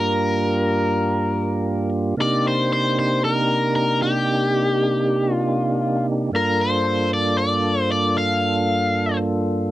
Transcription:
0.00 2.14 G2 medium
0.00 2.15 A#3 medium
0.00 2.15 D4 medium
0.00 2.15 F4 medium
0.00 2.16 G4 medium
0.00 1.89 A#4 medium
2.17 6.30 C3 medium
2.17 6.30 A#3 medium
2.17 6.31 D4 medium
2.17 6.31 D#4 medium
2.17 6.32 G4 medium
2.22 2.47 D5 medium
2.48 2.71 C5 medium
2.73 2.96 C5 medium
2.99 3.24 C5 medium
3.25 3.75 A#4 medium
3.76 4.00 A#4 medium
4.02 5.34 G4 medium
5.34 6.06 F4 medium
6.32 9.71 G2 medium
6.32 9.71 A#3 medium
6.32 9.71 D4 medium
6.32 9.71 F4 medium
6.32 9.71 A4 medium
6.36 6.60 A#4 medium
6.61 7.09 C5 medium
7.14 7.37 D5 medium
7.38 7.91 D5 medium
7.92 8.18 D5 medium
8.18 9.18 F5 loud

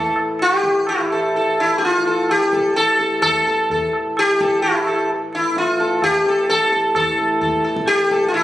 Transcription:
0.00 6.94 A2 medium
0.00 6.95 E3 medium
0.00 0.13 A3 medium
0.00 0.16 A4 soft
0.16 tabla na medium
0.39 0.88 G4 loud
0.39 tabla na medium
0.64 tabla ke medium
0.87 1.32 E4 medium
0.87 tabla na medium
1.11 1.34 A4 soft
1.11 tabla na medium
1.35 1.58 A4 soft
1.35 tabla tin medium
1.58 1.78 E4 medium
1.58 tabla na medium
1.78 1.83 G4 medium
1.78 tabla te medium
1.85 2.31 F4 medium
2.05 2.29 A4 soft
2.05 tabla te medium
2.29 2.74 G4 medium
2.29 tabla na medium
2.53 2.75 A4 soft
2.53 tabla ke medium
2.76 2.98 A4 medium
2.76 tabla te medium
2.99 3.21 A4 soft
2.99 tabla te medium
3.22 3.46 A4 medium
3.22 tabla na loud
3.22 tabla ge medium
3.47 3.69 A4 soft
3.47 tabla te medium
3.70 3.93 A4 soft
3.70 tabla tin medium
3.70 tabla ge medium
3.93 tabla na medium
4.17 4.62 G4 loud
4.17 tabla na medium
4.41 4.62 A4 soft
4.41 tabla ke medium
4.62 5.06 E4 medium
4.62 tabla na medium
4.87 5.09 A4 soft
4.87 tabla na medium
5.10 tabla tin medium
5.33 5.58 E4 medium
5.33 tabla na medium
5.56 6.03 F4 medium
5.56 tabla te medium
5.80 6.02 A4 soft
5.80 tabla te medium
6.02 6.51 G4 medium
6.02 tabla na medium
6.02 tabla ge medium
6.26 6.48 A4 soft
6.26 tabla te medium
6.49 6.71 A4 medium
6.49 tabla te medium
6.72 6.94 A4 soft
6.72 tabla te medium
6.95 8.44 A2 medium
6.95 8.44 E3 medium
6.95 7.40 A4 medium
6.95 tabla na medium
6.95 tabla ge medium
7.18 tabla te medium
7.41 7.63 A4 soft
7.41 tabla tin medium
7.41 tabla ge medium
7.64 7.86 A4 soft
7.64 tabla na medium
7.76 tabla ke medium
7.87 8.28 G4 loud
7.87 tabla na medium
8.11 8.32 A4 soft
8.11 tabla ke medium
8.28 8.34 F4 medium
8.34 8.44 E4 medium
8.34 tabla na medium

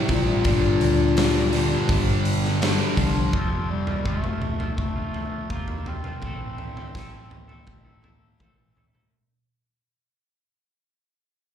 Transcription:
0.00 0.10 A2 medium
0.00 0.42 C3 medium
0.00 0.44 C3 medium
0.00 0.43 G3 medium
0.00 0.44 G3 medium
0.00 0.43 C4 medium
0.00 0.44 C4 medium
0.09 0.40 A1 medium
0.09 2.61 A#2 loud
0.09 0.43 C3 medium
0.09 0.43 G3 medium
0.09 0.44 C4 medium
0.09 kick medium
0.09 open hi-hat medium
0.44 0.76 G1 loud
0.44 1.50 G2 medium
0.44 1.16 G2 loud
0.44 1.51 D3 medium
0.44 1.17 D3 medium
0.44 1.17 G3 loud
0.44 1.51 G3 medium
0.44 kick loud
0.44 open hi-hat medium
0.81 1.73 D2 medium
0.81 open hi-hat medium
1.17 1.52 G2 medium
1.17 1.52 D3 medium
1.17 1.53 G3 medium
1.17 snare loud
1.17 open hi-hat medium
1.52 1.88 G2 medium
1.52 3.32 G2 medium
1.52 1.89 D3 medium
1.52 3.31 D3 medium
1.52 3.30 G3 medium
1.52 1.89 G3 medium
1.52 open hi-hat medium
1.89 2.81 G1 loud
1.89 2.60 G2 medium
1.89 2.61 D3 medium
1.89 2.62 G3 loud
1.89 kick loud
1.89 open hi-hat medium
2.25 open hi-hat medium
2.45 snare soft
2.61 2.96 G2 medium
2.61 2.97 D3 medium
2.61 2.97 G3 medium
2.61 snare loud
2.61 open hi-hat medium
2.96 3.28 C2 loud
2.96 3.31 G2 medium
2.96 3.31 D3 medium
2.96 3.72 F3 medium
2.96 3.31 G3 medium
2.96 kick medium
2.96 open hi-hat medium
3.33 3.95 F1 medium
3.33 4.03 F2 medium
3.33 6.20 F2 medium
3.33 4.03 C3 medium
3.33 6.21 C3 medium
3.33 3.89 F3 medium
3.33 6.22 F3 medium
3.33 3.89 A3 medium
3.33 3.87 C4 loud
3.33 3.86 F4 medium
3.33 kick medium
3.33 floor tom medium
3.70 4.08 G3 medium
3.87 4.04 F3 soft
3.87 4.05 A3 medium
3.87 4.06 C4 medium
3.87 4.05 F4 medium
3.87 floor tom medium
4.04 4.67 F1 medium
4.04 4.59 F2 medium
4.04 4.59 C3 medium
4.04 4.23 F3 medium
4.04 4.23 A3 medium
4.04 4.77 A3 medium
4.04 4.23 C4 medium
4.04 4.21 F4 medium
4.04 kick loud
4.22 4.40 F3 soft
4.22 4.41 A3 medium
4.22 4.41 C4 medium
4.22 4.41 F4 medium
4.22 mid tom medium
4.41 muted clean electric guitar stroke soft
4.41 floor tom medium
4.59 4.97 F3 medium
4.59 4.97 A3 medium
4.59 4.96 C4 medium
4.59 4.95 F4 medium
4.59 floor tom medium
4.77 5.09 F1 medium
4.77 5.52 A3 medium
4.77 kick loud
4.77 floor tom medium
4.96 5.13 F3 soft
4.96 5.70 A3 medium
4.96 5.16 C4 medium
4.96 5.15 F4 medium
5.14 5.50 F3 medium
5.14 5.52 C4 medium
5.14 5.51 F4 medium
5.14 floor tom medium
5.50 6.12 E1 medium
5.50 6.04 C3 medium
5.50 5.70 F3 medium
5.50 5.89 A#3 medium
5.50 5.69 C4 medium
5.50 5.67 F4 medium
5.50 kick medium
5.68 5.85 F3 soft
5.68 5.87 A3 medium
5.68 5.87 C4 medium
5.68 5.88 F4 medium
5.68 floor tom medium
5.86 6.06 F3 medium
5.86 6.06 A3 medium
5.86 6.05 C4 medium
5.86 8.41 C4 medium
5.86 6.03 F4 medium
5.86 floor tom medium
6.04 6.21 F3 medium
6.04 6.24 A3 medium
6.04 6.25 C4 soft
6.04 6.20 F4 medium
6.04 mid tom medium
6.22 6.84 A1 medium
6.22 9.10 A2 medium
6.22 6.93 A2 medium
6.22 6.93 E3 medium
6.22 9.11 E3 medium
6.22 6.78 A3 medium
6.22 6.77 C4 medium
6.22 6.76 E4 medium
6.22 6.75 A4 medium
6.22 kick medium
6.22 floor tom medium
6.26 9.12 A3 medium
6.58 floor tom medium
6.76 6.94 A3 soft
6.76 6.94 C4 soft
6.76 6.94 E4 medium
6.76 6.95 A4 medium
6.76 floor tom medium
6.94 7.57 A1 medium
6.94 7.48 A2 medium
6.94 7.49 E3 medium
6.94 7.13 A3 medium
6.94 7.13 C4 medium
6.94 7.12 E4 medium
6.94 7.11 A4 medium
6.94 kick loud
6.94 snare medium
7.12 7.29 A3 soft
7.12 7.30 C4 soft
7.12 7.31 E4 medium
7.12 7.30 A4 medium
7.31 muted clean electric guitar stroke soft
7.31 floor tom medium
7.48 7.86 A3 medium
7.48 7.86 C4 medium
7.48 7.85 E4 medium
7.48 7.84 A4 medium
7.48 floor tom medium
7.67 8.29 A1 medium
7.67 kick medium
7.67 floor tom medium
7.85 8.01 A3 medium
7.85 8.02 C4 medium
7.85 8.02 E4 medium
7.85 8.03 A4 medium
8.02 8.39 A3 medium
8.02 8.39 C4 medium
8.02 8.40 E4 medium
8.02 8.40 A4 medium
8.02 floor tom medium
8.39 9.02 A1 medium
8.39 8.94 A2 medium
8.39 8.94 E3 medium
8.39 8.58 A3 medium
8.39 8.57 C4 medium
8.39 8.57 E4 medium
8.39 8.56 A4 medium
8.39 kick medium
8.39 mid tom medium
8.57 8.74 A3 soft
8.57 8.75 C4 soft
8.57 8.76 E4 soft
8.57 8.77 A4 medium
8.75 8.95 A3 medium
8.75 8.94 C4 medium
8.75 8.93 E4 medium
8.75 8.92 A4 medium
8.75 floor tom medium
8.93 9.11 A3 soft
8.93 9.10 C4 soft
8.93 9.10 E4 soft
8.93 9.10 A4 medium
8.93 mid tom medium

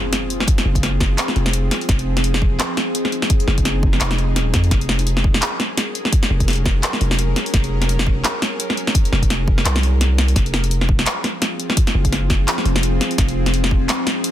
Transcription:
0.00 4.67 F3 medium
0.00 4.67 C4 medium
0.00 1.86 F4 medium
0.00 10.32 G#4 medium
0.00 impact medium
0.13 snare medium
0.13 closed hi-hat medium
0.30 closed hi-hat soft
0.40 snare medium
0.48 kick loud
0.48 closed hi-hat medium
0.58 snare medium
0.58 closed hi-hat soft
0.65 1.17 F#1 loud
0.75 kick medium
0.75 closed hi-hat soft
0.83 snare medium
0.83 open hi-hat medium
1.00 kick loud
1.00 snare medium
1.18 clap loud
1.18 closed hi-hat medium
1.28 snare medium
1.36 1.70 F1 loud
1.36 open hi-hat soft
1.46 snare medium
1.53 closed hi-hat medium
1.71 snare medium
1.71 open hi-hat medium
1.81 open hi-hat soft
1.88 2.58 F1 medium
1.88 4.68 D#4 medium
1.88 kick loud
1.88 snare medium
1.88 closed hi-hat medium
1.99 closed hi-hat soft
2.17 snare medium
2.17 closed hi-hat soft
2.24 open hi-hat medium
2.34 snare medium
2.42 kick loud
2.60 clap loud
2.60 snare medium
2.60 closed hi-hat medium
2.77 snare medium
2.77 open hi-hat soft
2.95 closed hi-hat medium
3.05 snare soft
3.12 closed hi-hat soft
3.22 snare medium
3.30 kick loud
3.30 closed hi-hat medium
3.40 closed hi-hat soft
3.48 3.99 F#1 loud
3.48 snare soft
3.58 kick medium
3.58 closed hi-hat soft
3.65 snare medium
3.65 open hi-hat medium
3.83 kick loud
3.93 snare medium
4.01 4.52 F1 loud
4.01 clap loud
4.01 closed hi-hat medium
4.11 snare medium
4.19 open hi-hat soft
4.36 snare medium
4.36 closed hi-hat medium
4.54 4.70 F2 loud
4.54 kick medium
4.54 snare medium
4.54 open hi-hat medium
4.64 open hi-hat soft
4.70 5.41 F1 loud
4.70 10.32 F#3 medium
4.70 10.32 C#4 medium
4.70 10.32 A#4 medium
4.70 kick loud
4.70 snare medium
4.70 closed hi-hat medium
4.81 closed hi-hat soft
4.89 snare medium
4.99 closed hi-hat soft
5.07 open hi-hat medium
5.17 snare medium
5.24 kick loud
5.34 snare medium
5.42 clap loud
5.42 closed hi-hat medium
5.60 snare medium
5.60 open hi-hat soft
5.77 snare medium
5.77 closed hi-hat medium
5.95 closed hi-hat soft
6.05 snare soft
6.12 kick loud
6.12 closed hi-hat medium
6.23 snare medium
6.23 closed hi-hat soft
6.30 6.82 F1 loud
6.40 kick medium
6.40 closed hi-hat soft
6.48 snare medium
6.48 open hi-hat medium
6.51 open hi-hat medium
6.53 open hi-hat soft
6.56 open hi-hat soft
6.66 kick loud
6.66 snare medium
6.83 clap loud
6.83 closed hi-hat medium
6.93 snare medium
7.01 7.35 F1 loud
7.01 open hi-hat soft
7.11 snare medium
7.19 closed hi-hat medium
7.36 snare medium
7.36 open hi-hat medium
7.46 open hi-hat soft
7.54 8.23 F1 loud
7.54 kick loud
7.54 snare medium
7.54 closed hi-hat medium
7.64 closed hi-hat soft
7.82 snare medium
7.82 closed hi-hat soft
7.89 open hi-hat medium
7.99 snare medium
8.07 kick loud
8.24 clap loud
8.24 snare medium
8.24 closed hi-hat medium
8.42 snare medium
8.42 open hi-hat soft
8.60 closed hi-hat medium
8.70 snare medium
8.77 closed hi-hat soft
8.87 snare medium
8.95 kick loud
8.95 closed hi-hat medium
9.05 closed hi-hat soft
9.13 9.64 F1 loud
9.13 snare medium
9.22 kick medium
9.22 closed hi-hat soft
9.30 snare medium
9.30 open hi-hat medium
9.48 kick loud
9.58 snare medium
9.65 10.35 C2 medium
9.65 clap loud
9.65 closed hi-hat medium
9.76 snare medium
9.83 open hi-hat soft
10.01 snare medium
10.01 closed hi-hat medium
10.18 snare medium
10.18 open hi-hat medium
10.28 open hi-hat soft
10.36 11.05 F1 loud
10.36 14.31 F3 medium
10.36 14.31 C4 medium
10.36 13.15 F4 medium
10.36 14.31 G#4 medium
10.36 kick loud
10.36 snare medium
10.36 closed hi-hat medium
10.46 closed hi-hat soft
10.54 snare medium
10.64 closed hi-hat soft
10.71 open hi-hat medium
10.81 snare medium
10.89 kick loud
10.99 snare medium
11.06 clap loud
11.06 closed hi-hat medium
11.24 snare medium
11.24 open hi-hat soft
11.42 snare medium
11.42 closed hi-hat medium
11.60 closed hi-hat soft
11.70 snare medium
11.77 kick loud
11.77 closed hi-hat medium
11.87 snare medium
11.87 closed hi-hat soft
11.95 12.46 F#1 loud
12.05 kick medium
12.05 closed hi-hat soft
12.13 snare medium
12.13 open hi-hat medium
12.30 kick loud
12.30 snare medium
12.48 clap loud
12.48 closed hi-hat medium
12.58 snare medium
12.65 12.99 F1 loud
12.65 open hi-hat soft
12.76 snare medium
12.83 closed hi-hat medium
13.01 snare medium
13.01 open hi-hat medium
13.11 open hi-hat soft
13.18 13.88 F1 medium
13.18 14.31 D#4 medium
13.18 kick loud
13.18 snare medium
13.18 closed hi-hat medium
13.29 closed hi-hat soft
13.46 snare medium
13.46 closed hi-hat soft
13.54 open hi-hat medium
13.64 snare medium
13.71 kick loud
13.89 clap loud
13.89 snare medium
13.89 closed hi-hat medium
14.07 snare medium
14.07 open hi-hat soft
14.24 closed hi-hat medium

